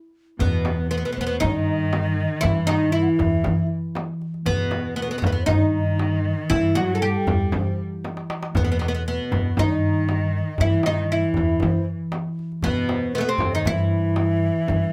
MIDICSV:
0, 0, Header, 1, 7, 480
1, 0, Start_track
1, 0, Tempo, 510204
1, 379, Time_signature, 4, 2, 24, 8
1, 14043, End_track
2, 0, Start_track
2, 0, Title_t, "Ney"
2, 0, Program_c, 0, 77
2, 386, Note_on_c, 0, 71, 67
2, 828, Note_off_c, 0, 71, 0
2, 860, Note_on_c, 0, 71, 65
2, 1104, Note_on_c, 0, 72, 73
2, 1118, Note_off_c, 0, 71, 0
2, 1340, Note_off_c, 0, 72, 0
2, 1344, Note_on_c, 0, 75, 86
2, 2310, Note_on_c, 0, 76, 82
2, 2324, Note_off_c, 0, 75, 0
2, 2525, Note_on_c, 0, 75, 85
2, 2540, Note_off_c, 0, 76, 0
2, 2768, Note_on_c, 0, 76, 73
2, 2783, Note_off_c, 0, 75, 0
2, 2846, Note_on_c, 0, 78, 62
2, 2860, Note_off_c, 0, 76, 0
2, 2909, Note_on_c, 0, 76, 76
2, 2923, Note_off_c, 0, 78, 0
2, 3495, Note_off_c, 0, 76, 0
2, 4212, Note_on_c, 0, 71, 67
2, 4659, Note_off_c, 0, 71, 0
2, 4702, Note_on_c, 0, 71, 66
2, 4775, Note_on_c, 0, 69, 59
2, 4789, Note_off_c, 0, 71, 0
2, 4830, Note_on_c, 0, 71, 69
2, 4844, Note_off_c, 0, 69, 0
2, 5168, Note_on_c, 0, 75, 71
2, 5182, Note_off_c, 0, 71, 0
2, 5875, Note_off_c, 0, 75, 0
2, 5881, Note_on_c, 0, 75, 75
2, 6128, Note_on_c, 0, 76, 82
2, 6142, Note_off_c, 0, 75, 0
2, 6368, Note_on_c, 0, 78, 95
2, 6383, Note_off_c, 0, 76, 0
2, 6606, Note_on_c, 0, 79, 81
2, 6620, Note_off_c, 0, 78, 0
2, 6671, Note_on_c, 0, 78, 64
2, 6685, Note_off_c, 0, 79, 0
2, 6748, Note_on_c, 0, 79, 87
2, 6762, Note_off_c, 0, 78, 0
2, 7088, Note_off_c, 0, 79, 0
2, 7093, Note_on_c, 0, 72, 70
2, 7317, Note_off_c, 0, 72, 0
2, 8063, Note_on_c, 0, 71, 62
2, 8507, Note_off_c, 0, 71, 0
2, 8551, Note_on_c, 0, 71, 69
2, 9028, Note_on_c, 0, 75, 84
2, 9042, Note_off_c, 0, 71, 0
2, 9730, Note_off_c, 0, 75, 0
2, 9735, Note_on_c, 0, 75, 81
2, 9981, Note_on_c, 0, 76, 91
2, 9995, Note_off_c, 0, 75, 0
2, 10222, Note_on_c, 0, 75, 83
2, 10236, Note_off_c, 0, 76, 0
2, 10299, Note_on_c, 0, 76, 68
2, 10313, Note_off_c, 0, 75, 0
2, 10341, Note_on_c, 0, 75, 78
2, 10355, Note_off_c, 0, 76, 0
2, 10470, Note_on_c, 0, 76, 75
2, 10484, Note_off_c, 0, 75, 0
2, 10932, Note_off_c, 0, 76, 0
2, 10938, Note_on_c, 0, 72, 75
2, 11161, Note_off_c, 0, 72, 0
2, 11892, Note_on_c, 0, 71, 80
2, 12126, Note_on_c, 0, 72, 77
2, 12140, Note_off_c, 0, 71, 0
2, 12375, Note_on_c, 0, 71, 80
2, 12389, Note_off_c, 0, 72, 0
2, 12494, Note_on_c, 0, 72, 79
2, 12508, Note_off_c, 0, 71, 0
2, 12726, Note_on_c, 0, 75, 80
2, 12740, Note_off_c, 0, 72, 0
2, 12855, Note_on_c, 0, 76, 99
2, 12869, Note_off_c, 0, 75, 0
2, 14043, Note_off_c, 0, 76, 0
2, 14043, End_track
3, 0, Start_track
3, 0, Title_t, "Oud"
3, 0, Program_c, 1, 24
3, 378, Note_on_c, 1, 59, 71
3, 843, Note_off_c, 1, 59, 0
3, 854, Note_on_c, 1, 59, 73
3, 906, Note_off_c, 1, 59, 0
3, 918, Note_on_c, 1, 59, 46
3, 979, Note_off_c, 1, 59, 0
3, 991, Note_on_c, 1, 59, 60
3, 1047, Note_off_c, 1, 59, 0
3, 1058, Note_on_c, 1, 59, 57
3, 1125, Note_off_c, 1, 59, 0
3, 1136, Note_on_c, 1, 59, 70
3, 1179, Note_off_c, 1, 59, 0
3, 1191, Note_on_c, 1, 59, 62
3, 1274, Note_off_c, 1, 59, 0
3, 1318, Note_on_c, 1, 63, 92
3, 2261, Note_off_c, 1, 63, 0
3, 2265, Note_on_c, 1, 64, 106
3, 2506, Note_off_c, 1, 64, 0
3, 2510, Note_on_c, 1, 63, 98
3, 2745, Note_off_c, 1, 63, 0
3, 2749, Note_on_c, 1, 64, 82
3, 3444, Note_off_c, 1, 64, 0
3, 4198, Note_on_c, 1, 59, 86
3, 4657, Note_off_c, 1, 59, 0
3, 4668, Note_on_c, 1, 59, 70
3, 4714, Note_off_c, 1, 59, 0
3, 4726, Note_on_c, 1, 59, 56
3, 4795, Note_off_c, 1, 59, 0
3, 4806, Note_on_c, 1, 59, 65
3, 4862, Note_off_c, 1, 59, 0
3, 4873, Note_on_c, 1, 59, 63
3, 4942, Note_off_c, 1, 59, 0
3, 4953, Note_on_c, 1, 59, 57
3, 4998, Note_off_c, 1, 59, 0
3, 5009, Note_on_c, 1, 59, 58
3, 5102, Note_off_c, 1, 59, 0
3, 5138, Note_on_c, 1, 63, 91
3, 6112, Note_on_c, 1, 64, 104
3, 6146, Note_off_c, 1, 63, 0
3, 6354, Note_on_c, 1, 66, 100
3, 6371, Note_off_c, 1, 64, 0
3, 6535, Note_off_c, 1, 66, 0
3, 6538, Note_on_c, 1, 69, 64
3, 6601, Note_off_c, 1, 69, 0
3, 6605, Note_on_c, 1, 67, 90
3, 7293, Note_off_c, 1, 67, 0
3, 8061, Note_on_c, 1, 59, 71
3, 8122, Note_off_c, 1, 59, 0
3, 8133, Note_on_c, 1, 59, 53
3, 8189, Note_off_c, 1, 59, 0
3, 8200, Note_on_c, 1, 59, 59
3, 8261, Note_off_c, 1, 59, 0
3, 8273, Note_on_c, 1, 59, 54
3, 8344, Note_off_c, 1, 59, 0
3, 8358, Note_on_c, 1, 59, 71
3, 8405, Note_off_c, 1, 59, 0
3, 8416, Note_on_c, 1, 59, 57
3, 8486, Note_off_c, 1, 59, 0
3, 8541, Note_on_c, 1, 59, 74
3, 9025, Note_on_c, 1, 63, 89
3, 9034, Note_off_c, 1, 59, 0
3, 9977, Note_off_c, 1, 63, 0
3, 9981, Note_on_c, 1, 64, 94
3, 10214, Note_off_c, 1, 64, 0
3, 10217, Note_on_c, 1, 63, 95
3, 10441, Note_off_c, 1, 63, 0
3, 10460, Note_on_c, 1, 64, 80
3, 11142, Note_off_c, 1, 64, 0
3, 11889, Note_on_c, 1, 59, 87
3, 12359, Note_off_c, 1, 59, 0
3, 12371, Note_on_c, 1, 59, 79
3, 12401, Note_on_c, 1, 57, 69
3, 12406, Note_off_c, 1, 59, 0
3, 12424, Note_on_c, 1, 59, 81
3, 12435, Note_off_c, 1, 57, 0
3, 12494, Note_off_c, 1, 59, 0
3, 12501, Note_on_c, 1, 60, 84
3, 12741, Note_off_c, 1, 60, 0
3, 12745, Note_on_c, 1, 63, 81
3, 12858, Note_off_c, 1, 63, 0
3, 12862, Note_on_c, 1, 64, 105
3, 14043, Note_off_c, 1, 64, 0
3, 14043, End_track
4, 0, Start_track
4, 0, Title_t, "Cello"
4, 0, Program_c, 2, 42
4, 371, Note_on_c, 2, 47, 77
4, 759, Note_off_c, 2, 47, 0
4, 801, Note_on_c, 2, 48, 54
4, 847, Note_on_c, 2, 47, 73
4, 861, Note_off_c, 2, 48, 0
4, 1340, Note_on_c, 2, 51, 99
4, 1354, Note_off_c, 2, 47, 0
4, 2292, Note_on_c, 2, 52, 100
4, 2306, Note_off_c, 2, 51, 0
4, 2541, Note_on_c, 2, 51, 96
4, 2555, Note_off_c, 2, 52, 0
4, 2771, Note_on_c, 2, 52, 86
4, 2785, Note_off_c, 2, 51, 0
4, 3493, Note_off_c, 2, 52, 0
4, 4216, Note_on_c, 2, 47, 81
4, 4661, Note_off_c, 2, 47, 0
4, 4703, Note_on_c, 2, 47, 75
4, 5145, Note_off_c, 2, 47, 0
4, 5168, Note_on_c, 2, 51, 86
4, 6128, Note_on_c, 2, 52, 95
4, 6142, Note_off_c, 2, 51, 0
4, 6389, Note_on_c, 2, 54, 89
4, 6403, Note_off_c, 2, 52, 0
4, 6621, Note_on_c, 2, 55, 89
4, 6635, Note_off_c, 2, 54, 0
4, 7339, Note_off_c, 2, 55, 0
4, 8044, Note_on_c, 2, 47, 72
4, 8497, Note_off_c, 2, 47, 0
4, 8537, Note_on_c, 2, 47, 78
4, 8984, Note_off_c, 2, 47, 0
4, 9031, Note_on_c, 2, 51, 86
4, 9947, Note_off_c, 2, 51, 0
4, 9980, Note_on_c, 2, 52, 98
4, 10226, Note_on_c, 2, 51, 90
4, 10240, Note_off_c, 2, 52, 0
4, 10476, Note_on_c, 2, 52, 89
4, 10491, Note_off_c, 2, 51, 0
4, 11188, Note_off_c, 2, 52, 0
4, 11892, Note_on_c, 2, 47, 92
4, 12342, Note_off_c, 2, 47, 0
4, 12386, Note_on_c, 2, 47, 76
4, 12438, Note_off_c, 2, 47, 0
4, 12446, Note_on_c, 2, 47, 72
4, 12493, Note_on_c, 2, 48, 76
4, 12507, Note_off_c, 2, 47, 0
4, 12744, Note_on_c, 2, 51, 82
4, 12758, Note_off_c, 2, 48, 0
4, 12864, Note_on_c, 2, 52, 92
4, 12878, Note_off_c, 2, 51, 0
4, 14043, Note_off_c, 2, 52, 0
4, 14043, End_track
5, 0, Start_track
5, 0, Title_t, "Upright bass"
5, 0, Program_c, 3, 32
5, 388, Note_on_c, 3, 40, 94
5, 954, Note_off_c, 3, 40, 0
5, 1103, Note_on_c, 3, 40, 81
5, 1291, Note_off_c, 3, 40, 0
5, 1347, Note_on_c, 3, 43, 91
5, 2104, Note_off_c, 3, 43, 0
5, 2295, Note_on_c, 3, 43, 96
5, 2866, Note_off_c, 3, 43, 0
5, 3014, Note_on_c, 3, 40, 78
5, 3204, Note_off_c, 3, 40, 0
5, 3255, Note_on_c, 3, 52, 84
5, 4210, Note_on_c, 3, 40, 88
5, 4224, Note_off_c, 3, 52, 0
5, 4783, Note_off_c, 3, 40, 0
5, 4932, Note_on_c, 3, 40, 84
5, 5123, Note_off_c, 3, 40, 0
5, 5176, Note_on_c, 3, 43, 97
5, 5937, Note_off_c, 3, 43, 0
5, 6133, Note_on_c, 3, 43, 96
5, 6705, Note_off_c, 3, 43, 0
5, 6852, Note_on_c, 3, 40, 77
5, 7044, Note_off_c, 3, 40, 0
5, 7094, Note_on_c, 3, 52, 82
5, 8057, Note_on_c, 3, 40, 86
5, 8071, Note_off_c, 3, 52, 0
5, 8628, Note_off_c, 3, 40, 0
5, 8780, Note_on_c, 3, 40, 78
5, 8969, Note_off_c, 3, 40, 0
5, 9017, Note_on_c, 3, 43, 92
5, 9779, Note_off_c, 3, 43, 0
5, 9974, Note_on_c, 3, 43, 101
5, 10547, Note_off_c, 3, 43, 0
5, 10699, Note_on_c, 3, 40, 82
5, 10889, Note_off_c, 3, 40, 0
5, 10936, Note_on_c, 3, 52, 84
5, 11908, Note_on_c, 3, 40, 84
5, 11922, Note_off_c, 3, 52, 0
5, 12475, Note_off_c, 3, 40, 0
5, 12625, Note_on_c, 3, 40, 73
5, 12813, Note_off_c, 3, 40, 0
5, 12862, Note_on_c, 3, 43, 109
5, 13622, Note_off_c, 3, 43, 0
5, 13825, Note_on_c, 3, 43, 99
5, 14043, Note_off_c, 3, 43, 0
5, 14043, End_track
6, 0, Start_track
6, 0, Title_t, "Darbuka"
6, 388, Note_on_c, 9, 64, 88
6, 483, Note_off_c, 9, 64, 0
6, 611, Note_on_c, 9, 63, 65
6, 705, Note_off_c, 9, 63, 0
6, 1332, Note_on_c, 9, 64, 94
6, 1427, Note_off_c, 9, 64, 0
6, 1462, Note_on_c, 9, 62, 20
6, 1556, Note_off_c, 9, 62, 0
6, 1813, Note_on_c, 9, 63, 74
6, 1907, Note_off_c, 9, 63, 0
6, 2060, Note_on_c, 9, 62, 24
6, 2154, Note_off_c, 9, 62, 0
6, 2176, Note_on_c, 9, 62, 24
6, 2271, Note_off_c, 9, 62, 0
6, 2289, Note_on_c, 9, 64, 104
6, 2383, Note_off_c, 9, 64, 0
6, 2406, Note_on_c, 9, 62, 22
6, 2500, Note_off_c, 9, 62, 0
6, 2531, Note_on_c, 9, 63, 75
6, 2625, Note_off_c, 9, 63, 0
6, 3006, Note_on_c, 9, 64, 95
6, 3101, Note_off_c, 9, 64, 0
6, 3241, Note_on_c, 9, 64, 93
6, 3335, Note_off_c, 9, 64, 0
6, 3371, Note_on_c, 9, 62, 22
6, 3465, Note_off_c, 9, 62, 0
6, 3731, Note_on_c, 9, 63, 64
6, 3825, Note_off_c, 9, 63, 0
6, 3965, Note_on_c, 9, 62, 27
6, 4059, Note_off_c, 9, 62, 0
6, 4083, Note_on_c, 9, 62, 27
6, 4177, Note_off_c, 9, 62, 0
6, 4197, Note_on_c, 9, 64, 82
6, 4291, Note_off_c, 9, 64, 0
6, 4432, Note_on_c, 9, 63, 57
6, 4526, Note_off_c, 9, 63, 0
6, 4913, Note_on_c, 9, 64, 81
6, 5007, Note_off_c, 9, 64, 0
6, 5155, Note_on_c, 9, 64, 97
6, 5249, Note_off_c, 9, 64, 0
6, 5275, Note_on_c, 9, 62, 21
6, 5369, Note_off_c, 9, 62, 0
6, 5640, Note_on_c, 9, 63, 69
6, 5734, Note_off_c, 9, 63, 0
6, 5881, Note_on_c, 9, 62, 28
6, 5975, Note_off_c, 9, 62, 0
6, 6006, Note_on_c, 9, 62, 25
6, 6100, Note_off_c, 9, 62, 0
6, 6121, Note_on_c, 9, 64, 93
6, 6215, Note_off_c, 9, 64, 0
6, 6248, Note_on_c, 9, 62, 26
6, 6342, Note_off_c, 9, 62, 0
6, 6369, Note_on_c, 9, 63, 64
6, 6463, Note_off_c, 9, 63, 0
6, 6717, Note_on_c, 9, 62, 25
6, 6811, Note_off_c, 9, 62, 0
6, 6841, Note_on_c, 9, 64, 99
6, 6935, Note_off_c, 9, 64, 0
6, 6969, Note_on_c, 9, 62, 27
6, 7063, Note_off_c, 9, 62, 0
6, 7080, Note_on_c, 9, 64, 104
6, 7174, Note_off_c, 9, 64, 0
6, 7572, Note_on_c, 9, 63, 51
6, 7666, Note_off_c, 9, 63, 0
6, 7687, Note_on_c, 9, 62, 61
6, 7781, Note_off_c, 9, 62, 0
6, 7808, Note_on_c, 9, 63, 85
6, 7902, Note_off_c, 9, 63, 0
6, 7927, Note_on_c, 9, 62, 83
6, 8022, Note_off_c, 9, 62, 0
6, 8042, Note_on_c, 9, 64, 95
6, 8136, Note_off_c, 9, 64, 0
6, 8165, Note_on_c, 9, 62, 26
6, 8259, Note_off_c, 9, 62, 0
6, 8293, Note_on_c, 9, 63, 62
6, 8387, Note_off_c, 9, 63, 0
6, 8771, Note_on_c, 9, 64, 103
6, 8865, Note_off_c, 9, 64, 0
6, 9009, Note_on_c, 9, 64, 100
6, 9103, Note_off_c, 9, 64, 0
6, 9131, Note_on_c, 9, 62, 25
6, 9225, Note_off_c, 9, 62, 0
6, 9489, Note_on_c, 9, 63, 60
6, 9583, Note_off_c, 9, 63, 0
6, 9718, Note_on_c, 9, 62, 22
6, 9813, Note_off_c, 9, 62, 0
6, 9955, Note_on_c, 9, 64, 101
6, 10049, Note_off_c, 9, 64, 0
6, 10191, Note_on_c, 9, 63, 70
6, 10285, Note_off_c, 9, 63, 0
6, 10667, Note_on_c, 9, 64, 86
6, 10761, Note_off_c, 9, 64, 0
6, 10913, Note_on_c, 9, 64, 95
6, 11007, Note_off_c, 9, 64, 0
6, 11039, Note_on_c, 9, 62, 21
6, 11133, Note_off_c, 9, 62, 0
6, 11401, Note_on_c, 9, 63, 69
6, 11496, Note_off_c, 9, 63, 0
6, 11656, Note_on_c, 9, 62, 27
6, 11750, Note_off_c, 9, 62, 0
6, 11777, Note_on_c, 9, 62, 25
6, 11871, Note_off_c, 9, 62, 0
6, 11878, Note_on_c, 9, 64, 81
6, 11972, Note_off_c, 9, 64, 0
6, 12126, Note_on_c, 9, 63, 66
6, 12220, Note_off_c, 9, 63, 0
6, 12591, Note_on_c, 9, 64, 94
6, 12685, Note_off_c, 9, 64, 0
6, 12846, Note_on_c, 9, 64, 85
6, 12940, Note_off_c, 9, 64, 0
6, 12970, Note_on_c, 9, 62, 25
6, 13064, Note_off_c, 9, 62, 0
6, 13323, Note_on_c, 9, 63, 72
6, 13417, Note_off_c, 9, 63, 0
6, 13575, Note_on_c, 9, 62, 28
6, 13669, Note_off_c, 9, 62, 0
6, 13696, Note_on_c, 9, 62, 27
6, 13790, Note_off_c, 9, 62, 0
6, 13814, Note_on_c, 9, 64, 91
6, 13909, Note_off_c, 9, 64, 0
6, 14043, End_track
7, 0, Start_track
7, 0, Title_t, "Frame drum"
7, 371, Note_on_c, 9, 64, 71
7, 465, Note_off_c, 9, 64, 0
7, 617, Note_on_c, 9, 64, 75
7, 711, Note_off_c, 9, 64, 0
7, 1329, Note_on_c, 9, 64, 80
7, 1423, Note_off_c, 9, 64, 0
7, 1816, Note_on_c, 9, 64, 73
7, 1910, Note_off_c, 9, 64, 0
7, 2286, Note_on_c, 9, 64, 88
7, 2380, Note_off_c, 9, 64, 0
7, 2525, Note_on_c, 9, 64, 68
7, 2619, Note_off_c, 9, 64, 0
7, 3001, Note_on_c, 9, 64, 81
7, 3095, Note_off_c, 9, 64, 0
7, 3237, Note_on_c, 9, 64, 88
7, 3331, Note_off_c, 9, 64, 0
7, 3719, Note_on_c, 9, 64, 71
7, 3813, Note_off_c, 9, 64, 0
7, 4192, Note_on_c, 9, 64, 69
7, 4286, Note_off_c, 9, 64, 0
7, 4437, Note_on_c, 9, 64, 75
7, 4531, Note_off_c, 9, 64, 0
7, 4926, Note_on_c, 9, 64, 90
7, 5020, Note_off_c, 9, 64, 0
7, 5158, Note_on_c, 9, 64, 89
7, 5252, Note_off_c, 9, 64, 0
7, 5640, Note_on_c, 9, 64, 67
7, 5735, Note_off_c, 9, 64, 0
7, 6122, Note_on_c, 9, 64, 93
7, 6216, Note_off_c, 9, 64, 0
7, 6358, Note_on_c, 9, 64, 74
7, 6452, Note_off_c, 9, 64, 0
7, 6845, Note_on_c, 9, 64, 93
7, 6939, Note_off_c, 9, 64, 0
7, 7077, Note_on_c, 9, 64, 102
7, 7171, Note_off_c, 9, 64, 0
7, 7569, Note_on_c, 9, 64, 69
7, 7663, Note_off_c, 9, 64, 0
7, 8045, Note_on_c, 9, 64, 97
7, 8139, Note_off_c, 9, 64, 0
7, 8765, Note_on_c, 9, 64, 95
7, 8860, Note_off_c, 9, 64, 0
7, 9003, Note_on_c, 9, 64, 90
7, 9097, Note_off_c, 9, 64, 0
7, 9491, Note_on_c, 9, 64, 71
7, 9585, Note_off_c, 9, 64, 0
7, 9978, Note_on_c, 9, 64, 77
7, 10072, Note_off_c, 9, 64, 0
7, 10219, Note_on_c, 9, 64, 73
7, 10313, Note_off_c, 9, 64, 0
7, 10694, Note_on_c, 9, 64, 82
7, 10788, Note_off_c, 9, 64, 0
7, 10937, Note_on_c, 9, 64, 92
7, 11031, Note_off_c, 9, 64, 0
7, 11413, Note_on_c, 9, 64, 62
7, 11507, Note_off_c, 9, 64, 0
7, 11893, Note_on_c, 9, 64, 81
7, 11987, Note_off_c, 9, 64, 0
7, 12129, Note_on_c, 9, 64, 64
7, 12223, Note_off_c, 9, 64, 0
7, 12609, Note_on_c, 9, 64, 90
7, 12703, Note_off_c, 9, 64, 0
7, 12848, Note_on_c, 9, 64, 88
7, 12942, Note_off_c, 9, 64, 0
7, 13326, Note_on_c, 9, 64, 61
7, 13420, Note_off_c, 9, 64, 0
7, 13809, Note_on_c, 9, 64, 72
7, 13904, Note_off_c, 9, 64, 0
7, 14043, End_track
0, 0, End_of_file